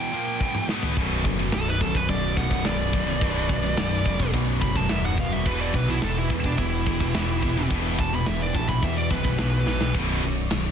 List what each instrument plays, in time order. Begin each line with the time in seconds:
Already playing: distorted electric guitar E2 B2 E3, lead electric guitar G5
0.12 distorted electric guitar A#2 F3 A#3
0.40 distorted electric guitar E2 B2 E3, kick
0.55 mid tom
0.68 distorted electric guitar B2 F#3 B3, snare
0.83 floor tom
0.96 picked electric bass B0, distorted electric guitar B1 F#2 B2, string section B3 F#4 B4 D5, kick, crash
1.25 picked electric bass F#1, distorted electric guitar B1 F#2 B2, kick, ride
1.39 distorted electric guitar B1 F#2
1.52 picked electric bass B0, distorted electric guitar B1 F#2 B2, lead electric guitar A4, snare, ride
1.69 lead electric guitar B4
1.80 picked electric bass B0, distorted electric guitar B1 F#2 B2, lead electric guitar A4, kick, ride
1.95 distorted electric guitar B1 F#2, lead electric guitar B4, kick
2.08 picked electric bass B0, distorted electric guitar B1 F#2 B2, lead electric guitar D5, kick, ride
2.36 picked electric bass B0, distorted electric guitar B1 F#2 B2, lead electric guitar F#5, kick, ride
2.51 distorted electric guitar B1 F#2, kick
2.65 picked electric bass B0, distorted electric guitar B1 F#2 B2, lead electric guitar D5, snare, ride
2.93 distorted electric guitar B1 F#2 B2, kick, ride
3.07 distorted electric guitar B1 F#2
3.21 picked electric bass B0, distorted electric guitar B1 F#2 B2, kick, ride
3.49 picked electric bass B0, distorted electric guitar B1 F#2 B2, kick, ride
3.63 distorted electric guitar B1 F#2
3.77 picked electric bass B0, distorted electric guitar B1 F#2 B2, snare, ride
4.05 picked electric bass E1, distorted electric guitar B1 F#2 B2, kick, ride
4.20 distorted electric guitar B1 F#2, kick
4.33 picked electric bass B1, distorted electric guitar B1 F#2 B2, kick, ride
4.61 picked electric bass F#1, distorted electric guitar B1 F#2 B2, lead electric guitar B5, kick, ride
4.76 distorted electric guitar B1 F#2, lead electric guitar A5, kick
4.89 picked electric bass D#1, distorted electric guitar B1 F#2 B2, lead electric guitar E5, snare, ride
5.06 lead electric guitar F#5
5.17 distorted electric guitar B1 F#2 B2, lead electric guitar F5, kick, ride
5.32 distorted electric guitar B1 F#2, lead electric guitar E5
5.45 picked electric bass E1, distorted electric guitar E2 B2 E3, string section E3 G4, lead electric guitar B4, kick, crash
5.61 lead electric guitar D5
5.74 picked electric bass B1, distorted electric guitar E2 B2 E3, lead electric guitar B4, kick, ride
5.88 distorted electric guitar E2 B2, lead electric guitar E4
6.02 picked electric bass E1, distorted electric guitar E2 B2 E3, lead electric guitar A4, snare, ride
6.18 lead electric guitar E4
6.30 picked electric bass E1, distorted electric guitar E2 B2 E3, kick, ride
6.44 distorted electric guitar E2 B2, lead electric guitar D4, kick
6.58 picked electric bass E1, distorted electric guitar E2 B2 E3, lead electric guitar E4, kick, ride
6.86 picked electric bass E1, distorted electric guitar E2 B2 E3, kick, ride
7.00 distorted electric guitar E2 B2, kick
7.14 picked electric bass E1, distorted electric guitar E2 B2 E3, snare, ride
7.42 distorted electric guitar E2 B2 E3, kick, ride
7.57 distorted electric guitar E2 B2
7.70 picked electric bass E1, distorted electric guitar E2 B2 E3, kick, ride
7.98 picked electric bass E1, distorted electric guitar E2 B2 E3, lead electric guitar A5, kick, ride
8.13 distorted electric guitar E2 B2, lead electric guitar B5
8.26 picked electric bass E1, distorted electric guitar E2 B2 E3, lead electric guitar E5, snare, ride
8.42 lead electric guitar D5
8.54 picked electric bass A#1, distorted electric guitar E2 B2 E3, lead electric guitar A5, kick, ride
8.69 distorted electric guitar E2 B2, lead electric guitar B5, kick
8.82 distorted electric guitar E2 B2 E3, picked electric bass E2, lead electric guitar E5, kick, ride
8.97 lead electric guitar D5
9.10 picked electric bass B0, distorted electric guitar E2 B2 E3, lead electric guitar B4, kick, ride
9.24 distorted electric guitar E2 B2, kick
9.38 picked electric bass B1, distorted electric guitar E2 B2 E3, snare, ride
9.66 distorted electric guitar E2 B2 E3, snare
9.80 distorted electric guitar E2 B2, snare
9.94 picked electric bass B0, distorted electric guitar B1 F#2 B2, string section B3 F#4 C#5 D5, kick, crash
10.23 picked electric bass B0, distorted electric guitar B1 F#2, ride
10.50 picked electric bass B0, distorted electric guitar B1 F#2, snare, ride